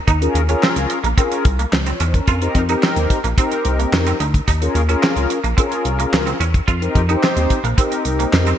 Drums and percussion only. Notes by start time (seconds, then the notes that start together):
0.08 kick, closed hi-hat
0.22 closed hi-hat
0.35 closed hi-hat
0.49 closed hi-hat
0.63 snare, clap
0.76 closed hi-hat
0.90 closed hi-hat
1.04 closed hi-hat
1.18 kick, closed hi-hat
1.32 closed hi-hat
1.45 kick, closed hi-hat
1.59 closed hi-hat
1.73 snare, clap
1.86 closed hi-hat
2.00 closed hi-hat
2.14 kick, closed hi-hat
2.27 kick, closed hi-hat
2.42 closed hi-hat
2.55 kick, closed hi-hat
2.69 closed hi-hat
2.83 snare, clap
2.96 closed hi-hat
3.10 kick, closed hi-hat
3.24 closed hi-hat
3.38 kick, closed hi-hat
3.52 closed hi-hat
3.65 closed hi-hat
3.80 closed hi-hat
3.93 snare, clap
4.07 closed hi-hat
4.20 closed hi-hat
4.34 kick, closed hi-hat
4.48 kick, closed hi-hat
4.62 closed hi-hat
4.75 closed hi-hat
4.89 closed hi-hat
5.03 snare, clap
5.17 closed hi-hat
5.30 closed hi-hat
5.44 closed hi-hat
5.58 kick, closed hi-hat
5.72 closed hi-hat
5.85 closed hi-hat
5.99 closed hi-hat
6.14 snare, clap
6.27 closed hi-hat
6.41 closed hi-hat
6.54 kick, closed hi-hat
6.68 kick, closed hi-hat
6.82 closed hi-hat
6.95 kick, closed hi-hat
7.09 closed hi-hat
7.23 snare, clap
7.37 closed hi-hat
7.50 kick, closed hi-hat
7.64 closed hi-hat
7.78 kick, closed hi-hat
7.92 closed hi-hat
8.05 closed hi-hat
8.20 closed hi-hat
8.33 snare, clap
8.47 closed hi-hat